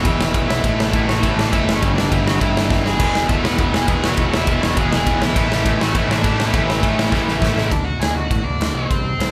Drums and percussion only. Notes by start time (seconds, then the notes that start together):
0.05 kick, ride
0.21 snare
0.34 kick, ride
0.50 snare
0.64 kick, ride
0.80 snare
0.93 kick, ride
1.09 snare
1.23 kick, ride
1.39 snare
1.53 kick, ride
1.69 snare
1.82 kick, ride
1.98 snare
2.12 kick, ride
2.28 snare
2.41 kick, ride
2.57 snare
2.70 kick, snare
2.86 snare
3.00 kick, crash, ride
3.15 snare
3.29 kick, ride
3.45 snare
3.58 kick, ride
3.74 snare
3.88 kick, ride
4.04 snare
4.17 kick, ride
4.34 snare
4.47 kick, ride
4.63 snare
4.77 kick, ride
4.93 snare
5.07 kick, ride
5.22 snare
5.36 kick, ride
5.52 snare
5.66 kick, ride
5.81 snare
5.95 kick, ride
6.11 snare
6.24 kick, ride
6.40 snare
6.54 kick, ride
6.70 snare
6.83 kick, ride
6.99 snare
7.12 kick, snare
7.28 snare
7.42 kick, snare
7.58 snare
7.71 kick, ride
8.02 snare, ride
8.31 kick, ride
8.61 snare, ride
8.91 kick, ride
9.20 snare, ride